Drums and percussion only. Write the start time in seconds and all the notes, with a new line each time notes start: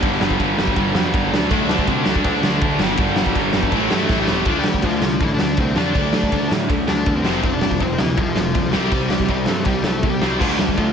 0.03 kick, ride
0.21 snare
0.30 kick
0.40 kick, ride
0.58 snare
0.67 kick
0.76 kick, ride
0.95 snare
1.14 kick, ride
1.34 snare
1.51 kick, ride
1.69 snare
1.78 kick
1.87 kick, ride
2.06 snare
2.15 kick
2.24 kick, ride
2.43 snare
2.61 kick, ride
2.79 snare
2.97 kick, ride
3.16 snare
3.26 kick
3.35 kick, ride
3.53 snare
3.63 kick
3.72 kick, ride
3.91 snare
4.09 kick, snare
4.27 snare
4.45 kick, ride
4.64 snare
4.74 kick
4.82 kick, ride
5.02 snare
5.20 kick, ride
5.39 snare
5.57 kick, ride
5.76 snare
5.95 kick, ride
6.13 snare
6.23 kick
6.32 kick, ride
6.51 snare
6.70 kick, ride
6.88 snare
7.06 kick, ride
7.25 snare
7.43 kick, ride
7.61 snare
7.71 kick
7.80 kick, ride
7.99 snare
8.17 kick, ride
8.36 snare
8.55 kick, ride
8.73 snare
8.91 kick, ride
9.10 snare
9.20 kick
9.28 kick, ride
9.46 snare
9.65 kick, ride
9.84 snare
10.03 kick, ride
10.22 snare
10.41 kick, crash
10.59 snare
10.69 kick
10.78 kick, ride